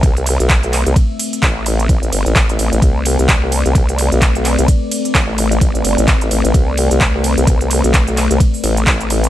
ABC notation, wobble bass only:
X:1
M:4/4
L:1/16
Q:"Swing 16ths" 1/4=129
K:Am
V:1 name="Wobble bass" clef=bass
C,,3 B,,,4 C,, z4 A,,,4 | A,,, A,,, G,,, A,,,3 A,,, A,,, C,,3 C,,4 C,,- | C,,3 B,,,4 C,, z4 A,,,4 | A,,, A,,, G,,, A,,,3 A,,, A,,, C,,3 C,,4 C,,- |
C,,3 B,,,4 C,, z2 A,,,2 A,,,4 |]